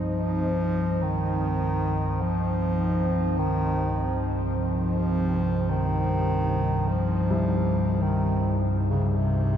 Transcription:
0, 0, Header, 1, 6, 480
1, 0, Start_track
1, 0, Tempo, 1171875
1, 1377, Time_signature, 4, 2, 24, 8
1, 1856, Tempo, 1158301
1, 3945, End_track
2, 0, Start_track
2, 0, Title_t, "Synth texture"
2, 0, Program_c, 0, 99
2, 0, Note_on_c, 0, 63, 72
2, 0, Note_on_c, 0, 75, 75
2, 3945, Note_off_c, 0, 63, 0
2, 3945, Note_off_c, 0, 75, 0
2, 3945, End_track
3, 0, Start_track
3, 0, Title_t, "Ambient pad"
3, 0, Program_c, 1, 92
3, 0, Note_on_c, 1, 60, 70
3, 0, Note_on_c, 1, 63, 66
3, 0, Note_on_c, 1, 72, 69
3, 942, Note_on_c, 1, 67, 64
3, 3945, Note_off_c, 1, 60, 0
3, 3945, Note_off_c, 1, 63, 0
3, 3945, Note_off_c, 1, 67, 0
3, 3945, Note_off_c, 1, 72, 0
3, 3945, End_track
4, 0, Start_track
4, 0, Title_t, "Bass clarinet"
4, 0, Program_c, 2, 71
4, 0, Note_on_c, 2, 53, 95
4, 418, Note_on_c, 2, 51, 93
4, 425, Note_off_c, 2, 53, 0
4, 907, Note_on_c, 2, 53, 96
4, 913, Note_off_c, 2, 51, 0
4, 1385, Note_on_c, 2, 51, 96
4, 1391, Note_off_c, 2, 53, 0
4, 1750, Note_off_c, 2, 51, 0
4, 1861, Note_on_c, 2, 53, 100
4, 2341, Note_on_c, 2, 51, 97
4, 2347, Note_off_c, 2, 53, 0
4, 2830, Note_on_c, 2, 53, 96
4, 2837, Note_off_c, 2, 51, 0
4, 3301, Note_on_c, 2, 51, 92
4, 3307, Note_off_c, 2, 53, 0
4, 3549, Note_off_c, 2, 51, 0
4, 3661, Note_on_c, 2, 49, 80
4, 3741, Note_off_c, 2, 49, 0
4, 3741, Note_on_c, 2, 49, 60
4, 3775, Note_on_c, 2, 48, 85
4, 3782, Note_off_c, 2, 49, 0
4, 3945, Note_off_c, 2, 48, 0
4, 3945, End_track
5, 0, Start_track
5, 0, Title_t, "Synth drone"
5, 0, Program_c, 3, 95
5, 0, Note_on_c, 3, 36, 67
5, 0, Note_on_c, 3, 43, 72
5, 3945, Note_off_c, 3, 36, 0
5, 3945, Note_off_c, 3, 43, 0
5, 3945, End_track
6, 0, Start_track
6, 0, Title_t, "Grand piano"
6, 0, Program_c, 4, 0
6, 0, Control_c, 4, 64, 127
6, 3005, Note_on_c, 4, 36, 63
6, 3945, Note_off_c, 4, 36, 0
6, 3945, End_track
0, 0, End_of_file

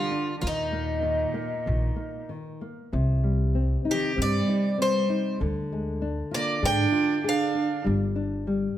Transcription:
0, 0, Header, 1, 5, 480
1, 0, Start_track
1, 0, Key_signature, -3, "minor"
1, 0, Tempo, 625000
1, 339, Time_signature, 4, 2, 24, 8
1, 3226, Tempo, 610998
1, 6821, End_track
2, 0, Start_track
2, 0, Title_t, "Twelve-string acoustic guitar"
2, 0, Program_c, 0, 25
2, 0, Note_on_c, 0, 65, 80
2, 268, Note_off_c, 0, 65, 0
2, 319, Note_on_c, 0, 65, 51
2, 355, Note_off_c, 0, 65, 0
2, 361, Note_on_c, 0, 63, 65
2, 1753, Note_off_c, 0, 63, 0
2, 3003, Note_on_c, 0, 67, 73
2, 3216, Note_off_c, 0, 67, 0
2, 3239, Note_on_c, 0, 74, 89
2, 3682, Note_off_c, 0, 74, 0
2, 3712, Note_on_c, 0, 72, 70
2, 4157, Note_off_c, 0, 72, 0
2, 4910, Note_on_c, 0, 74, 81
2, 5154, Note_on_c, 0, 79, 96
2, 5155, Note_off_c, 0, 74, 0
2, 5645, Note_off_c, 0, 79, 0
2, 5650, Note_on_c, 0, 77, 78
2, 6089, Note_off_c, 0, 77, 0
2, 6821, End_track
3, 0, Start_track
3, 0, Title_t, "Nylon-string guitar"
3, 0, Program_c, 1, 24
3, 0, Note_on_c, 1, 55, 53
3, 84, Note_on_c, 1, 62, 41
3, 92, Note_off_c, 1, 55, 0
3, 321, Note_on_c, 1, 51, 55
3, 322, Note_off_c, 1, 62, 0
3, 555, Note_on_c, 1, 58, 46
3, 778, Note_off_c, 1, 51, 0
3, 787, Note_on_c, 1, 51, 50
3, 794, Note_off_c, 1, 58, 0
3, 1028, Note_on_c, 1, 58, 53
3, 1030, Note_off_c, 1, 51, 0
3, 1272, Note_off_c, 1, 58, 0
3, 1274, Note_on_c, 1, 51, 50
3, 1506, Note_on_c, 1, 58, 43
3, 1516, Note_off_c, 1, 51, 0
3, 1753, Note_off_c, 1, 58, 0
3, 1759, Note_on_c, 1, 51, 48
3, 2002, Note_off_c, 1, 51, 0
3, 2007, Note_on_c, 1, 58, 39
3, 2247, Note_on_c, 1, 48, 51
3, 2250, Note_off_c, 1, 58, 0
3, 2483, Note_on_c, 1, 55, 42
3, 2725, Note_on_c, 1, 60, 45
3, 2729, Note_off_c, 1, 55, 0
3, 2953, Note_off_c, 1, 60, 0
3, 2956, Note_on_c, 1, 63, 49
3, 3193, Note_off_c, 1, 63, 0
3, 3196, Note_on_c, 1, 60, 54
3, 3443, Note_off_c, 1, 60, 0
3, 3448, Note_on_c, 1, 63, 50
3, 3679, Note_off_c, 1, 63, 0
3, 3683, Note_on_c, 1, 60, 52
3, 3925, Note_off_c, 1, 60, 0
3, 3928, Note_on_c, 1, 63, 44
3, 4147, Note_off_c, 1, 48, 0
3, 4169, Note_off_c, 1, 63, 0
3, 4170, Note_on_c, 1, 50, 59
3, 4423, Note_on_c, 1, 56, 52
3, 4653, Note_on_c, 1, 62, 50
3, 4656, Note_off_c, 1, 56, 0
3, 4885, Note_on_c, 1, 65, 55
3, 4891, Note_off_c, 1, 62, 0
3, 5128, Note_off_c, 1, 65, 0
3, 5131, Note_on_c, 1, 68, 55
3, 5360, Note_off_c, 1, 68, 0
3, 5363, Note_on_c, 1, 65, 49
3, 5607, Note_off_c, 1, 65, 0
3, 5615, Note_on_c, 1, 68, 53
3, 5853, Note_on_c, 1, 62, 44
3, 5854, Note_off_c, 1, 68, 0
3, 6069, Note_off_c, 1, 50, 0
3, 6088, Note_on_c, 1, 55, 62
3, 6094, Note_off_c, 1, 62, 0
3, 6334, Note_on_c, 1, 62, 53
3, 6571, Note_off_c, 1, 55, 0
3, 6573, Note_off_c, 1, 62, 0
3, 6581, Note_on_c, 1, 55, 53
3, 6815, Note_off_c, 1, 55, 0
3, 6821, End_track
4, 0, Start_track
4, 0, Title_t, "Cello"
4, 0, Program_c, 2, 42
4, 0, Note_on_c, 2, 50, 69
4, 254, Note_off_c, 2, 50, 0
4, 291, Note_on_c, 2, 50, 44
4, 338, Note_off_c, 2, 50, 0
4, 351, Note_on_c, 2, 46, 64
4, 1748, Note_off_c, 2, 46, 0
4, 2999, Note_on_c, 2, 51, 65
4, 3214, Note_off_c, 2, 51, 0
4, 3226, Note_on_c, 2, 55, 76
4, 3675, Note_off_c, 2, 55, 0
4, 3692, Note_on_c, 2, 55, 65
4, 4147, Note_off_c, 2, 55, 0
4, 4907, Note_on_c, 2, 58, 71
4, 5130, Note_off_c, 2, 58, 0
4, 5145, Note_on_c, 2, 62, 88
4, 5595, Note_off_c, 2, 62, 0
4, 5638, Note_on_c, 2, 62, 72
4, 6083, Note_off_c, 2, 62, 0
4, 6821, End_track
5, 0, Start_track
5, 0, Title_t, "Upright bass"
5, 0, Program_c, 3, 32
5, 332, Note_on_c, 3, 39, 77
5, 952, Note_off_c, 3, 39, 0
5, 1284, Note_on_c, 3, 34, 76
5, 1443, Note_off_c, 3, 34, 0
5, 2251, Note_on_c, 3, 36, 82
5, 2881, Note_off_c, 3, 36, 0
5, 3210, Note_on_c, 3, 43, 82
5, 3371, Note_off_c, 3, 43, 0
5, 4176, Note_on_c, 3, 38, 79
5, 4803, Note_off_c, 3, 38, 0
5, 5134, Note_on_c, 3, 44, 83
5, 5294, Note_off_c, 3, 44, 0
5, 6105, Note_on_c, 3, 31, 82
5, 6728, Note_off_c, 3, 31, 0
5, 6821, End_track
0, 0, End_of_file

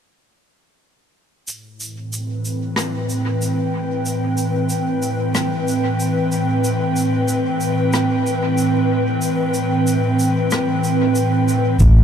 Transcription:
0, 0, Header, 1, 4, 480
1, 0, Start_track
1, 0, Key_signature, 0, "minor"
1, 0, Tempo, 645161
1, 1102, Time_signature, 4, 2, 24, 8
1, 8957, End_track
2, 0, Start_track
2, 0, Title_t, "Analog synth pad"
2, 0, Program_c, 0, 89
2, 1102, Note_on_c, 0, 45, 80
2, 1344, Note_on_c, 0, 52, 70
2, 1420, Note_on_c, 0, 60, 73
2, 1571, Note_on_c, 0, 71, 74
2, 2025, Note_on_c, 0, 79, 69
2, 8957, Note_off_c, 0, 45, 0
2, 8957, Note_off_c, 0, 52, 0
2, 8957, Note_off_c, 0, 60, 0
2, 8957, Note_off_c, 0, 71, 0
2, 8957, Note_off_c, 0, 79, 0
2, 8957, End_track
3, 0, Start_track
3, 0, Title_t, "Fingered electric bass"
3, 0, Program_c, 1, 33
3, 8782, Note_on_c, 1, 33, 87
3, 8957, Note_off_c, 1, 33, 0
3, 8957, End_track
4, 0, Start_track
4, 0, Title_t, "Drums"
4, 1100, Note_on_c, 9, 82, 61
4, 1175, Note_off_c, 9, 82, 0
4, 1341, Note_on_c, 9, 82, 43
4, 1416, Note_off_c, 9, 82, 0
4, 1585, Note_on_c, 9, 82, 58
4, 1659, Note_off_c, 9, 82, 0
4, 1823, Note_on_c, 9, 82, 43
4, 1897, Note_off_c, 9, 82, 0
4, 2055, Note_on_c, 9, 37, 80
4, 2070, Note_on_c, 9, 82, 58
4, 2130, Note_off_c, 9, 37, 0
4, 2145, Note_off_c, 9, 82, 0
4, 2303, Note_on_c, 9, 82, 40
4, 2377, Note_off_c, 9, 82, 0
4, 2544, Note_on_c, 9, 82, 52
4, 2618, Note_off_c, 9, 82, 0
4, 3020, Note_on_c, 9, 82, 62
4, 3094, Note_off_c, 9, 82, 0
4, 3256, Note_on_c, 9, 82, 43
4, 3331, Note_off_c, 9, 82, 0
4, 3494, Note_on_c, 9, 82, 58
4, 3568, Note_off_c, 9, 82, 0
4, 3738, Note_on_c, 9, 82, 42
4, 3813, Note_off_c, 9, 82, 0
4, 3979, Note_on_c, 9, 37, 78
4, 3981, Note_on_c, 9, 82, 59
4, 4053, Note_off_c, 9, 37, 0
4, 4055, Note_off_c, 9, 82, 0
4, 4226, Note_on_c, 9, 82, 39
4, 4300, Note_off_c, 9, 82, 0
4, 4463, Note_on_c, 9, 82, 54
4, 4538, Note_off_c, 9, 82, 0
4, 4701, Note_on_c, 9, 82, 38
4, 4775, Note_off_c, 9, 82, 0
4, 4943, Note_on_c, 9, 82, 55
4, 5017, Note_off_c, 9, 82, 0
4, 5180, Note_on_c, 9, 82, 45
4, 5255, Note_off_c, 9, 82, 0
4, 5419, Note_on_c, 9, 82, 63
4, 5493, Note_off_c, 9, 82, 0
4, 5659, Note_on_c, 9, 82, 44
4, 5734, Note_off_c, 9, 82, 0
4, 5902, Note_on_c, 9, 82, 61
4, 5905, Note_on_c, 9, 37, 87
4, 5976, Note_off_c, 9, 82, 0
4, 5979, Note_off_c, 9, 37, 0
4, 6151, Note_on_c, 9, 82, 39
4, 6225, Note_off_c, 9, 82, 0
4, 6382, Note_on_c, 9, 82, 56
4, 6456, Note_off_c, 9, 82, 0
4, 6858, Note_on_c, 9, 82, 53
4, 6932, Note_off_c, 9, 82, 0
4, 7099, Note_on_c, 9, 82, 42
4, 7173, Note_off_c, 9, 82, 0
4, 7345, Note_on_c, 9, 82, 63
4, 7420, Note_off_c, 9, 82, 0
4, 7584, Note_on_c, 9, 82, 46
4, 7659, Note_off_c, 9, 82, 0
4, 7820, Note_on_c, 9, 82, 58
4, 7829, Note_on_c, 9, 37, 85
4, 7895, Note_off_c, 9, 82, 0
4, 7904, Note_off_c, 9, 37, 0
4, 8064, Note_on_c, 9, 82, 38
4, 8139, Note_off_c, 9, 82, 0
4, 8299, Note_on_c, 9, 82, 54
4, 8373, Note_off_c, 9, 82, 0
4, 8545, Note_on_c, 9, 82, 43
4, 8620, Note_off_c, 9, 82, 0
4, 8777, Note_on_c, 9, 82, 62
4, 8783, Note_on_c, 9, 36, 106
4, 8851, Note_off_c, 9, 82, 0
4, 8857, Note_off_c, 9, 36, 0
4, 8957, End_track
0, 0, End_of_file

